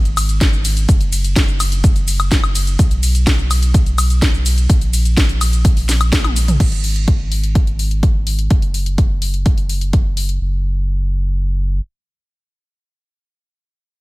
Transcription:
Already playing: sub bass G#1
0.05 closed hi-hat, shaker
0.17 open hi-hat, ride, high woodblock, shaker
0.29 closed hi-hat, shaker
0.41 kick, snare, closed hi-hat, shaker
0.53 shaker
0.65 open hi-hat, ride, shaker
0.77 closed hi-hat, shaker
0.89 sub bass F#1, kick, closed hi-hat, shaker
1.01 closed hi-hat, shaker
1.13 open hi-hat, ride, shaker
1.24 closed hi-hat, shaker
1.36 kick, snare, closed hi-hat, shaker
1.48 shaker
1.60 open hi-hat, ride, high woodblock, shaker
1.72 closed hi-hat, shaker
1.84 kick, closed hi-hat, shaker
1.96 closed hi-hat, shaker
2.08 open hi-hat, ride, shaker
2.20 closed hi-hat, high woodblock, shaker
2.31 kick, snare, closed hi-hat, shaker
2.44 high woodblock, shaker
2.55 open hi-hat, ride, shaker
2.67 closed hi-hat, shaker
2.79 sub bass B1, kick, closed hi-hat, shaker
2.91 closed hi-hat, shaker
3.03 open hi-hat, ride, shaker
3.15 closed hi-hat, shaker
3.27 kick, snare, closed hi-hat, shaker
3.39 shaker
3.51 open hi-hat, ride, high woodblock, shaker
3.62 closed hi-hat, shaker
3.74 kick, closed hi-hat, shaker
3.86 closed hi-hat, shaker
3.98 open hi-hat, ride, high woodblock, shaker
4.10 closed hi-hat, shaker
4.22 kick, snare, closed hi-hat, shaker
4.34 shaker
4.46 open hi-hat, ride, shaker
4.58 closed hi-hat, shaker
4.70 sub bass A#1, kick, closed hi-hat, shaker
4.82 closed hi-hat, shaker
4.93 open hi-hat, ride, shaker
5.05 closed hi-hat, shaker
5.17 kick, snare, closed hi-hat, shaker
5.29 closed hi-hat, shaker
5.41 open hi-hat, ride, high woodblock, shaker
5.53 closed hi-hat, shaker
5.65 kick, closed hi-hat, shaker
5.77 open hi-hat, shaker
5.89 snare, open hi-hat, ride, shaker
6.01 closed hi-hat, high woodblock, shaker
6.12 kick, snare, closed hi-hat, high tom, shaker
6.24 closed hi-hat, high tom, high woodblock, shaker
6.36 open hi-hat, ride, shaker
6.48 closed hi-hat, mid tom, shaker
6.60 sub bass G#1, kick, closed hi-hat, crash
6.72 closed hi-hat
6.84 open hi-hat
6.96 closed hi-hat
7.08 kick, closed hi-hat
7.32 open hi-hat
7.43 closed hi-hat
7.55 kick, closed hi-hat
7.67 closed hi-hat
7.79 open hi-hat
7.91 closed hi-hat
8.03 kick, closed hi-hat
8.27 open hi-hat
8.39 closed hi-hat
8.50 sub bass F#1, kick, closed hi-hat
8.62 closed hi-hat
8.74 open hi-hat
8.86 closed hi-hat
8.98 kick, closed hi-hat
9.22 open hi-hat
9.34 closed hi-hat
9.46 kick, closed hi-hat
9.58 closed hi-hat
9.69 open hi-hat
9.81 closed hi-hat
9.93 kick, closed hi-hat
10.17 open hi-hat
10.29 closed hi-hat
10.41 sub bass F#1

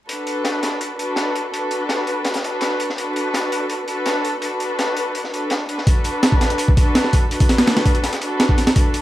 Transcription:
0.08 string section D4 F#4 A4 B4, closed hi-hat
0.27 closed hi-hat
0.44 snare, closed hi-hat
0.63 snare, closed hi-hat
0.81 closed hi-hat
0.98 string section D4 F#4 A4 B4, closed hi-hat
1.16 snare, closed hi-hat
1.35 closed hi-hat
1.53 string section D4 F#4 A4 B4, closed hi-hat
1.71 closed hi-hat
1.89 snare, closed hi-hat
2.07 closed hi-hat
2.25 snare, closed hi-hat
2.34 snare, closed hi-hat
2.43 string section D4 F#4 A4 B4, closed hi-hat
2.61 snare, closed hi-hat
2.80 closed hi-hat
2.90 snare
2.97 string section D4 F#4 A4 B4, closed hi-hat
3.16 closed hi-hat
3.34 snare, closed hi-hat
3.52 closed hi-hat
3.70 closed hi-hat
3.88 string section D4 F#4 A4 B4, closed hi-hat
4.06 snare, closed hi-hat
4.25 closed hi-hat
4.42 string section D4 F#4 A4 B4, closed hi-hat
4.60 closed hi-hat
4.79 snare, closed hi-hat
4.97 closed hi-hat
5.15 closed hi-hat
5.24 snare
5.33 string section D4 F#4 A4 B4, closed hi-hat
5.50 snare, closed hi-hat
5.69 string section D4 F#4 A4 B4, closed hi-hat
5.78 snare
5.87 string section D4 F#4 A4 B4, kick, closed hi-hat, open hi-hat
6.04 closed hi-hat, open hi-hat
6.23 snare, closed hi-hat, open hi-hat
6.32 kick
6.41 snare, closed hi-hat, open hi-hat
6.50 closed hi-hat
6.58 closed hi-hat, open hi-hat
6.68 kick
6.77 string section D4 F#4 A4 B4, kick, closed hi-hat, open hi-hat
6.95 snare, closed hi-hat, open hi-hat
7.04 snare
7.13 kick, closed hi-hat, open hi-hat
7.31 string section D4 F#4 A4 B4, closed hi-hat, open hi-hat
7.40 kick, open hi-hat
7.49 snare, closed hi-hat, open hi-hat
7.58 snare, open hi-hat
7.67 snare, closed hi-hat, open hi-hat
7.77 snare, open hi-hat
7.86 kick, closed hi-hat, open hi-hat
7.95 closed hi-hat
8.03 snare, closed hi-hat, open hi-hat
8.13 snare, closed hi-hat
8.21 string section D4 F#4 A4 B4, closed hi-hat, open hi-hat
8.40 snare, closed hi-hat, open hi-hat
8.49 kick
8.58 snare, closed hi-hat, open hi-hat
8.66 snare, open hi-hat
8.76 string section D4 F#4 A4 B4, kick, closed hi-hat, open hi-hat
8.94 closed hi-hat, open hi-hat

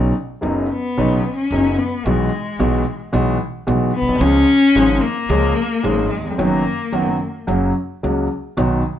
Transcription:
Already playing: upright bass B1, grand piano B1 B2 C#3 F#3 B3 D#4
0.41 grand piano F#1 F#2 C#3 F#3 B3 D#4, upright bass F#1
0.69 cello B3
0.97 grand piano B1 B2 C#3 F#3 B3 D#4, upright bass B1
1.36 cello C#4
1.51 upright bass F#1, grand piano F#1 F#2 C#3 F#3 B3 D#4
1.79 cello B3
2.06 upright bass B1, grand piano B1 B2 E3 G#3 B3 F#4, cello G#3
2.59 grand piano B1 B2 E3 G#3 B3 F#4, upright bass B1
3.12 grand piano B1 B2 E3 G#3 B3 F#4, upright bass B1
3.67 grand piano B1 B2 E3 G#3 B3 F#4, upright bass B1
3.94 cello B3
4.01 upright bass A#1, grand piano A#1
4.09 grand piano B1, upright bass B1
4.15 grand piano C2, upright bass C2
4.20 upright bass C#2, grand piano C#2 C#3 F3 G#3 C#4 G#4, cello C#4
4.75 upright bass G#1, grand piano G#1 G#2 F3 G#3 C#4 G#4
5.01 cello A#3
5.29 upright bass C#2, grand piano C#2 C#3 F3 G#3 C#4 G#4
5.84 grand piano G#1 G#2 F3 G#3 C#4 G#4, upright bass G#1
6.10 cello G#3
6.17 grand piano D#2
6.24 grand piano E2
6.31 grand piano F2
6.38 upright bass F#1, grand piano F#2 D#3 F#3 B3 F#4, cello A#3
6.92 upright bass F#1, grand piano F#2 D#3 F#3 B3 F#4
7.47 upright bass F#1, grand piano F#2 C#3 F#3 A#3 F#4
8.03 grand piano C#2 C#3 F#3 A#3 F#4, upright bass C#2
8.57 upright bass B1, grand piano B1 B2 D#3 F#3 B3 F#4

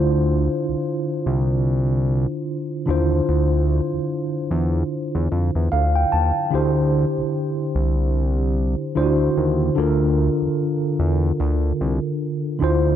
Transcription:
Already playing: analog synth bass D2, tine electric piano D3 D4 E4 F4 C5
0.69 analog synth bass C2
1.26 analog synth bass C2
2.86 analog synth bass D#2, tine electric piano D3 D4 E4 F4
2.91 tine electric piano C5
3.29 analog synth bass D2
3.93 analog synth bass E2
4.51 analog synth bass E2
5.15 analog synth bass E2
5.32 analog synth bass F2
5.55 analog synth bass E2
5.72 analog synth bass D2, tine electric piano F5
5.96 tine electric piano G5
6.12 analog synth bass D#2, tine electric piano A5
6.50 analog synth bass D2, tine electric piano D3 D4 E4 G4
6.55 tine electric piano C5
7.18 analog synth bass C2
7.75 analog synth bass C2
8.95 analog synth bass D2, tine electric piano D3 D4 E4 F4 C5
9.03 tine electric piano F#4
9.37 analog synth bass D#2
9.75 analog synth bass D2, tine electric piano D3 D4 F4 A4
9.80 tine electric piano A#4
10.42 analog synth bass E2
10.99 analog synth bass E2
11.40 analog synth bass D2
11.81 analog synth bass C2
12.59 analog synth bass D2, tine electric piano D3 D4 E4 F4
12.64 tine electric piano C5

